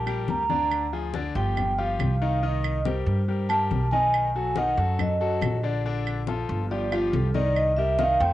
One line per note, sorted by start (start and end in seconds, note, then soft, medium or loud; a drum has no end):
0.00 0.24 A#1 medium
0.00 0.26 A5 medium
0.06 0.42 G3 medium
0.06 0.42 G4 medium
0.06 0.42 A#4 medium
0.06 high conga soft
0.06 claves medium
0.28 1.29 D2 medium
0.28 0.90 A#5 medium
0.28 high conga medium
0.50 0.85 D3 medium
0.50 0.85 D4 medium
0.50 0.85 D5 medium
0.50 high conga medium
0.71 high conga soft
0.71 claves medium
0.93 1.10 F3 medium
0.93 1.11 F4 medium
0.93 1.11 G#4 medium
0.93 high conga soft
1.14 1.32 D3 medium
1.14 1.32 D4 medium
1.14 1.32 D5 medium
1.14 high conga medium
1.35 1.96 G1 loud
1.35 1.71 F3 medium
1.35 1.71 F4 medium
1.35 1.71 G4 medium
1.35 1.76 G5 medium
1.35 high conga soft
1.57 high conga soft
1.57 low conga medium
1.57 claves medium
1.78 2.13 F3 medium
1.78 2.14 F4 medium
1.78 2.14 G4 medium
1.78 2.39 F5 loud
1.78 high conga soft
1.99 3.01 C2 medium
1.99 high conga medium
1.99 claves medium
2.22 2.39 D#3 medium
2.22 2.39 D#4 medium
2.22 2.39 D#5 medium
2.22 high conga soft
2.43 2.78 D#3 medium
2.43 2.78 D#4 medium
2.43 2.83 D#5 medium
2.43 2.78 D#5 medium
2.43 high conga soft
2.64 high conga soft
2.64 claves medium
2.85 3.20 G3 medium
2.85 3.21 G4 medium
2.85 3.21 A#4 medium
2.85 3.46 C5 medium
2.85 high conga medium
3.06 3.67 G2 medium
3.06 high conga soft
3.28 3.46 G3 medium
3.28 3.46 G4 medium
3.28 3.46 A#4 medium
3.28 high conga soft
3.49 3.85 G3 medium
3.49 3.85 G4 medium
3.49 3.85 A#4 medium
3.49 3.89 A5 loud
3.49 high conga soft
3.49 claves medium
3.71 4.72 B1 medium
3.71 high conga medium
3.91 4.28 D#3 medium
3.91 4.28 D#4 medium
3.91 4.28 D#5 medium
3.91 4.52 G#5 loud
3.91 high conga medium
4.13 high conga soft
4.13 claves medium
4.34 4.53 F#3 medium
4.34 4.53 F#4 medium
4.34 4.53 A4 medium
4.34 high conga soft
4.56 4.74 D#3 medium
4.56 4.75 D#4 medium
4.56 4.75 D#5 medium
4.56 4.97 F#5 medium
4.56 high conga medium
4.77 5.38 F#2 medium
4.77 5.13 F#3 medium
4.77 5.14 F#4 medium
4.77 5.14 A4 medium
4.77 high conga soft
4.99 5.61 D#5 medium
4.99 high conga soft
4.99 low conga medium
4.99 claves medium
5.20 5.56 F#3 medium
5.20 5.56 F#4 medium
5.20 5.56 A4 medium
5.20 high conga soft
5.41 6.43 A#1 medium
5.41 high conga medium
5.41 claves medium
5.63 5.81 D3 medium
5.63 5.81 D4 medium
5.63 5.81 D5 medium
5.63 high conga soft
5.84 6.20 D3 medium
5.84 6.21 D4 medium
5.84 6.21 D5 medium
5.84 high conga soft
6.06 high conga soft
6.06 claves medium
6.27 6.63 F3 medium
6.27 6.63 F4 medium
6.27 6.63 A4 medium
6.27 high conga medium
6.49 7.09 G1 loud
6.49 high conga soft
6.70 6.88 F3 medium
6.70 6.89 F4 medium
6.70 6.89 G4 medium
6.70 6.92 D5 medium
6.70 high conga soft
6.92 7.27 F3 medium
6.92 7.27 F4 medium
6.92 7.13 F4 medium
6.92 7.28 G4 medium
6.92 high conga soft
6.92 claves medium
7.13 8.14 C2 loud
7.13 7.35 A4 medium
7.13 high conga medium
7.34 7.70 D#3 medium
7.34 7.70 D#4 medium
7.34 7.56 D5 medium
7.34 7.70 D#5 medium
7.34 high conga medium
7.56 7.77 D#5 medium
7.56 high conga soft
7.56 claves medium
7.77 7.95 G3 medium
7.77 7.96 G4 medium
7.77 7.96 A#4 medium
7.77 7.98 E5 medium
7.77 high conga soft
7.99 8.16 D#3 medium
7.99 8.17 D#4 medium
7.99 8.17 D#5 medium
7.99 8.20 F5 loud
7.99 high conga medium
8.20 8.33 F2 loud
8.20 8.33 A3 medium
8.20 8.33 A4 medium
8.20 8.33 C5 medium
8.20 8.33 G5 loud
8.20 high conga soft